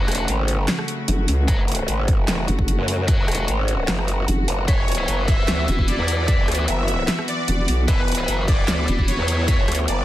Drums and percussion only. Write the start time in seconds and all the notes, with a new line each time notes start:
0.08 cross-stick, closed hi-hat
0.12 closed hi-hat
0.15 closed hi-hat
0.28 closed hi-hat
0.48 closed hi-hat
0.68 snare, clap, closed hi-hat
0.79 cross-stick
0.88 closed hi-hat
1.08 closed hi-hat
1.28 open hi-hat
1.48 kick, closed hi-hat
1.68 closed hi-hat
1.72 closed hi-hat
1.75 closed hi-hat
1.88 closed hi-hat
2.08 kick, closed hi-hat
2.28 snare, clap, closed hi-hat
2.48 closed hi-hat
2.59 kick
2.68 closed hi-hat
2.88 open hi-hat
3.08 kick, closed hi-hat
3.28 cross-stick, closed hi-hat
3.32 closed hi-hat
3.35 closed hi-hat
3.48 closed hi-hat
3.68 closed hi-hat
3.88 snare, clap, closed hi-hat
3.99 cross-stick
4.08 closed hi-hat
4.28 closed hi-hat
4.48 open hi-hat
4.68 kick, closed hi-hat
4.88 closed hi-hat
4.92 closed hi-hat
4.95 closed hi-hat
5.08 closed hi-hat
5.28 kick, closed hi-hat
5.48 snare, clap, closed hi-hat
5.68 closed hi-hat
5.79 kick
5.88 closed hi-hat
6.08 open hi-hat
6.28 kick, closed hi-hat
6.48 cross-stick, closed hi-hat
6.52 closed hi-hat
6.55 closed hi-hat
6.68 closed hi-hat
6.88 closed hi-hat
7.08 snare, clap, closed hi-hat
7.19 cross-stick
7.28 closed hi-hat
7.48 closed hi-hat
7.68 open hi-hat
7.88 kick, closed hi-hat
8.08 closed hi-hat
8.12 closed hi-hat
8.15 closed hi-hat
8.28 closed hi-hat
8.48 kick, closed hi-hat
8.68 snare, clap, closed hi-hat
8.88 closed hi-hat
8.99 kick
9.08 closed hi-hat
9.28 open hi-hat
9.48 kick, closed hi-hat
9.68 cross-stick, closed hi-hat
9.72 closed hi-hat
9.75 closed hi-hat
9.88 closed hi-hat